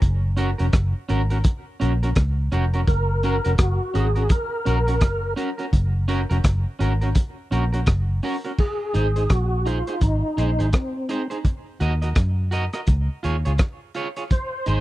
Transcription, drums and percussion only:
0.02 kick medium
0.02 closed hi-hat medium
0.37 closed hi-hat medium
0.59 closed hi-hat medium
0.73 kick loud
0.73 cross-stick medium
0.73 closed hi-hat medium
1.09 closed hi-hat medium
1.30 closed hi-hat soft
1.44 kick loud
1.44 closed hi-hat medium
1.81 closed hi-hat medium
2.03 closed hi-hat medium
2.16 kick loud
2.16 cross-stick loud
2.16 closed hi-hat loud
2.52 closed hi-hat medium
2.73 closed hi-hat soft
2.87 kick loud
2.87 closed hi-hat medium
3.23 closed hi-hat medium
3.45 closed hi-hat medium
3.58 kick loud
3.58 cross-stick loud
3.58 closed hi-hat medium
3.95 closed hi-hat medium
4.16 closed hi-hat soft
4.29 kick loud
4.29 closed hi-hat medium
4.66 closed hi-hat medium
4.88 closed hi-hat medium
5.01 kick loud
5.01 cross-stick loud
5.01 closed hi-hat medium
5.37 closed hi-hat medium
5.59 closed hi-hat soft
5.73 kick loud
5.73 closed hi-hat medium
6.08 closed hi-hat medium
6.31 closed hi-hat medium
6.44 kick loud
6.44 cross-stick loud
6.44 closed hi-hat medium
6.80 closed hi-hat medium
7.01 closed hi-hat soft
7.15 kick loud
7.15 closed hi-hat loud
7.52 closed hi-hat medium
7.74 closed hi-hat medium
7.86 kick loud
7.86 cross-stick loud
7.86 closed hi-hat medium
8.23 open hi-hat medium
8.45 closed hi-hat soft
8.58 kick loud
8.58 crash medium
8.94 closed hi-hat medium
9.16 closed hi-hat medium
9.30 kick medium
9.30 cross-stick loud
9.30 closed hi-hat medium
9.66 closed hi-hat medium
9.87 closed hi-hat soft
10.01 kick loud
10.01 closed hi-hat medium
10.38 closed hi-hat medium
10.60 closed hi-hat medium
10.73 kick loud
10.73 cross-stick loud
10.73 closed hi-hat medium
11.09 closed hi-hat medium
11.31 closed hi-hat soft
11.45 kick loud
11.45 closed hi-hat medium
11.80 closed hi-hat medium
12.02 closed hi-hat medium
12.15 kick loud
12.15 cross-stick loud
12.15 closed hi-hat medium
12.52 closed hi-hat medium
12.73 cross-stick medium
12.73 closed hi-hat soft
12.87 kick loud
12.87 closed hi-hat medium
13.24 closed hi-hat medium
13.45 closed hi-hat medium
13.58 kick loud
13.58 cross-stick loud
13.58 closed hi-hat medium
13.95 closed hi-hat medium
14.16 closed hi-hat medium
14.30 kick loud
14.30 closed hi-hat medium
14.66 closed hi-hat medium

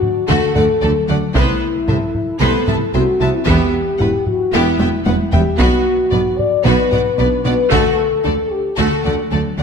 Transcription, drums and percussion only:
0.02 taiko low-mid soft
0.56 taiko low-mid medium
1.35 taiko loud
1.88 taiko low-mid medium
2.15 taiko low-mid soft
2.68 taiko low-mid medium
3.47 taiko medium
4.00 taiko low-mid medium
4.27 taiko low-mid soft
4.80 taiko high medium
5.06 taiko high medium
5.33 taiko low medium
5.59 taiko medium
6.12 taiko low-mid medium
6.39 taiko low-mid soft
6.92 taiko low-mid medium
7.72 taiko medium

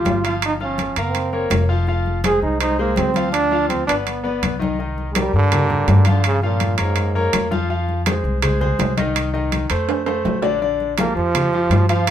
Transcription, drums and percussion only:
0.05 high conga medium
0.05 high timbale medium
0.05 low timbale medium
0.25 high timbale medium
0.42 high conga soft
0.42 high timbale medium
0.60 high conga soft
0.78 high conga medium
0.78 high timbale medium
0.96 high conga soft
0.96 high timbale medium
1.15 high conga soft
1.15 high timbale medium
1.33 high conga soft
1.50 high conga medium
1.50 high timbale medium
1.50 low timbale medium
1.87 high conga soft
2.06 high conga soft
2.24 high conga medium
2.24 high timbale medium
2.42 high conga soft
2.61 high conga soft
2.61 high timbale medium
2.79 high conga soft
2.96 high conga medium
2.96 high timbale medium
2.96 low timbale medium
3.14 high conga medium
3.14 high timbale medium
3.32 high conga soft
3.32 high timbale medium
3.51 high conga soft
3.70 high conga medium
3.70 high timbale medium
3.88 high conga soft
3.88 high timbale medium
4.07 high conga soft
4.07 high timbale medium
4.25 high conga soft
4.43 high conga medium
4.43 high timbale medium
4.62 high conga medium
4.80 high conga soft
4.98 high conga soft
5.15 high conga medium
5.15 high timbale medium
5.34 high conga soft
5.52 high conga soft
5.52 low conga medium
5.52 high timbale medium
5.70 high conga soft
5.70 low conga medium
5.88 high conga medium
5.88 high timbale medium
5.88 low timbale medium
6.05 high conga medium
6.05 high timbale medium
6.24 high conga soft
6.24 high timbale loud
6.42 high conga soft
6.60 high conga medium
6.60 high timbale medium
6.78 high conga soft
6.78 high timbale medium
6.96 high conga soft
6.96 high timbale medium
7.16 high conga soft
7.33 high conga medium
7.33 high timbale medium
7.33 low timbale medium
7.52 high conga medium
7.70 high conga soft
7.89 high conga soft
8.06 high conga medium
8.06 high timbale medium
8.25 high conga soft
8.42 high conga soft
8.42 low conga medium
8.42 high timbale medium
8.61 high conga soft
8.61 low conga medium
8.79 high conga medium
8.79 high timbale medium
8.79 low timbale medium
8.97 high conga medium
8.97 high timbale medium
9.16 high conga soft
9.16 high timbale medium
9.35 high conga soft
9.52 high conga medium
9.52 high timbale medium
9.70 high conga soft
9.70 high timbale medium
9.89 high conga soft
9.89 high timbale medium
10.06 high conga soft
10.06 high timbale medium
10.25 high conga medium
10.25 low timbale medium
10.42 low timbale medium
10.62 high conga soft
10.80 high conga soft
10.98 high conga medium
10.98 high timbale medium
11.17 high conga soft
11.35 high conga soft
11.35 low conga medium
11.35 high timbale medium
11.53 high conga soft
11.71 high conga medium
11.71 high timbale medium
11.71 low timbale medium
11.89 high timbale medium
12.07 high timbale medium

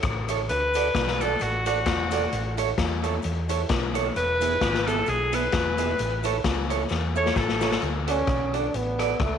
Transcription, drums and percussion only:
0.03 kick loud
0.03 cross-stick loud
0.03 closed hi-hat medium
0.03 cabasa medium
0.29 closed hi-hat medium
0.29 cabasa loud
0.49 closed hi-hat medium
0.49 cabasa soft
0.74 closed hi-hat medium
0.74 cabasa medium
0.95 kick loud
0.95 snare loud
0.95 closed hi-hat medium
0.95 cabasa medium
1.08 snare medium
1.21 closed hi-hat medium
1.21 cabasa medium
1.39 closed hi-hat medium
1.39 cabasa medium
1.66 closed hi-hat medium
1.66 cabasa medium
1.86 kick loud
1.86 snare loud
1.86 closed hi-hat medium
1.86 cabasa medium
2.11 closed hi-hat medium
2.11 cabasa loud
2.32 closed hi-hat medium
2.32 cabasa medium
2.58 closed hi-hat medium
2.58 cabasa medium
2.78 kick loud
2.78 snare loud
2.78 closed hi-hat medium
2.78 cabasa medium
3.04 closed hi-hat medium
3.04 cabasa medium
3.22 closed hi-hat medium
3.22 cabasa medium
3.49 closed hi-hat medium
3.49 cabasa medium
3.69 kick loud
3.69 snare loud
3.69 closed hi-hat medium
3.69 cabasa medium
3.95 closed hi-hat medium
3.95 cabasa loud
4.16 closed hi-hat medium
4.16 cabasa medium
4.41 closed hi-hat medium
4.41 cabasa medium
4.61 kick loud
4.61 snare loud
4.61 closed hi-hat medium
4.61 cabasa medium
4.74 snare medium
4.87 closed hi-hat medium
4.87 cabasa medium
5.06 closed hi-hat medium
5.06 cabasa medium
5.32 closed hi-hat medium
5.32 cabasa medium
5.52 kick loud
5.52 snare loud
5.52 closed hi-hat medium
5.52 cabasa soft
5.78 closed hi-hat medium
5.78 cabasa loud
5.98 closed hi-hat medium
5.98 cabasa soft
6.23 closed hi-hat medium
6.23 cabasa medium
6.44 kick loud
6.44 snare loud
6.44 closed hi-hat medium
6.44 cabasa medium
6.70 closed hi-hat medium
6.70 cabasa medium
6.89 snare medium
6.89 cabasa medium
7.16 cabasa medium
7.26 snare medium
7.36 kick loud
7.36 snare medium
7.36 cabasa medium
7.49 snare medium
7.61 snare loud
7.61 cabasa medium
7.71 snare medium
7.82 closed hi-hat medium
8.08 closed hi-hat medium
8.27 kick loud
8.27 cross-stick loud
8.27 closed hi-hat medium
8.54 closed hi-hat medium
8.74 closed hi-hat medium
8.99 cross-stick medium
8.99 closed hi-hat medium
9.19 kick loud
9.19 cross-stick loud
9.19 closed hi-hat medium

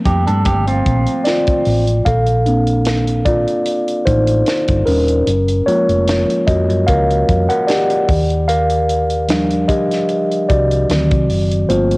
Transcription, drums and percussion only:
0.06 kick medium
0.06 closed hi-hat medium
0.27 closed hi-hat soft
0.45 kick medium
0.45 closed hi-hat medium
0.68 closed hi-hat soft
0.86 kick medium
0.86 closed hi-hat medium
1.07 closed hi-hat medium
1.25 snare medium
1.25 closed hi-hat medium
1.47 kick medium
1.47 closed hi-hat soft
1.65 open hi-hat medium
1.87 closed hi-hat medium
2.06 kick loud
2.06 closed hi-hat medium
2.26 closed hi-hat medium
2.46 closed hi-hat medium
2.67 closed hi-hat soft
2.85 snare loud
2.85 closed hi-hat medium
3.08 closed hi-hat medium
3.26 kick medium
3.26 closed hi-hat medium
3.48 closed hi-hat soft
3.66 closed hi-hat medium
3.88 closed hi-hat soft
4.07 kick medium
4.07 closed hi-hat medium
4.27 closed hi-hat medium
4.46 snare medium
4.46 closed hi-hat medium
4.68 kick medium
4.68 closed hi-hat soft
4.87 open hi-hat medium
5.08 closed hi-hat medium
5.27 closed hi-hat medium
5.48 closed hi-hat soft
5.68 closed hi-hat medium
5.89 closed hi-hat soft
6.08 snare loud
6.08 closed hi-hat medium
6.30 closed hi-hat medium
6.48 kick medium
6.48 closed hi-hat medium
6.70 closed hi-hat soft
6.88 kick medium
6.88 closed hi-hat medium
7.11 closed hi-hat soft
7.29 kick medium
7.29 closed hi-hat medium
7.50 closed hi-hat medium
7.68 snare medium
7.68 closed hi-hat medium
7.90 closed hi-hat soft
8.09 kick loud
8.09 open hi-hat medium
8.30 closed hi-hat medium
8.49 closed hi-hat medium
8.70 closed hi-hat medium
8.89 closed hi-hat medium
9.10 closed hi-hat soft
9.29 snare loud
9.29 closed hi-hat medium
9.51 closed hi-hat medium
9.69 kick medium
9.69 closed hi-hat medium
9.91 snare soft
9.91 closed hi-hat soft
10.09 closed hi-hat medium
10.32 closed hi-hat soft
10.50 kick medium
10.50 closed hi-hat medium
10.71 closed hi-hat medium
10.90 snare medium
10.90 closed hi-hat medium
11.11 kick medium
11.11 closed hi-hat medium
11.30 open hi-hat medium
11.51 closed hi-hat medium
11.70 closed hi-hat medium
11.91 closed hi-hat soft

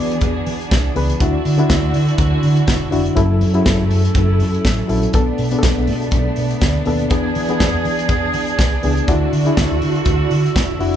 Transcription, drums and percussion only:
0.11 closed hi-hat soft
0.21 kick loud
0.21 closed hi-hat medium
0.46 open hi-hat medium
0.61 closed hi-hat soft
0.71 kick loud
0.71 snare loud
0.71 closed hi-hat medium
0.96 open hi-hat medium
1.10 closed hi-hat soft
1.20 kick loud
1.20 closed hi-hat medium
1.45 open hi-hat medium
1.58 closed hi-hat soft
1.70 kick loud
1.70 snare loud
1.70 closed hi-hat medium
1.94 open hi-hat medium
2.08 closed hi-hat soft
2.18 kick loud
2.18 closed hi-hat medium
2.43 open hi-hat medium
2.57 closed hi-hat soft
2.67 kick loud
2.67 snare medium
2.67 closed hi-hat medium
2.92 open hi-hat medium
3.06 closed hi-hat soft
3.17 kick loud
3.17 closed hi-hat soft
3.41 open hi-hat medium
3.54 closed hi-hat soft
3.66 kick loud
3.66 snare loud
3.66 closed hi-hat medium
3.91 open hi-hat medium
4.05 closed hi-hat soft
4.15 kick loud
4.15 closed hi-hat medium
4.40 open hi-hat medium
4.55 closed hi-hat soft
4.65 kick loud
4.65 snare medium
4.65 closed hi-hat medium
4.89 open hi-hat medium
5.03 closed hi-hat soft
5.13 kick loud
5.13 closed hi-hat medium
5.38 open hi-hat medium
5.51 closed hi-hat soft
5.63 kick loud
5.63 snare loud
5.63 closed hi-hat medium
5.87 open hi-hat medium
6.02 closed hi-hat soft
6.11 kick loud
6.11 closed hi-hat medium
6.36 open hi-hat medium
6.51 closed hi-hat soft
6.61 kick loud
6.61 snare medium
6.61 closed hi-hat medium
6.85 open hi-hat medium
6.99 closed hi-hat soft
7.10 kick loud
7.10 closed hi-hat medium
7.35 open hi-hat medium
7.49 closed hi-hat soft
7.60 kick loud
7.60 snare loud
7.60 closed hi-hat medium
7.85 open hi-hat medium
7.99 closed hi-hat soft
8.09 kick loud
8.09 closed hi-hat medium
8.33 open hi-hat medium
8.48 closed hi-hat soft
8.59 kick medium
8.59 snare medium
8.59 closed hi-hat medium
8.83 open hi-hat medium
8.97 closed hi-hat soft
9.08 kick loud
9.08 closed hi-hat medium
9.33 open hi-hat medium
9.46 closed hi-hat soft
9.57 kick loud
9.57 snare loud
9.57 closed hi-hat medium
9.82 open hi-hat medium
9.96 closed hi-hat soft
10.05 kick loud
10.05 closed hi-hat medium
10.31 open hi-hat medium
10.46 closed hi-hat soft
10.56 kick loud
10.56 snare medium
10.56 closed hi-hat medium
10.81 open hi-hat medium

